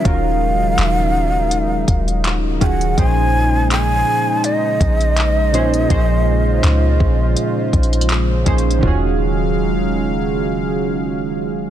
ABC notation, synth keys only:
X:1
M:4/4
L:1/8
Q:"Swing 16ths" 1/4=82
K:Ebm
V:1 name="Synth keys"
[E,DFGB]3 z4 [E,DFGA] | [B,,F,DEA=c]3 z4 [B,,F,DEAc] | [B,,F,DEA=c]3 z4 [B,,F,DEAc] | [E,DFGA]8 |]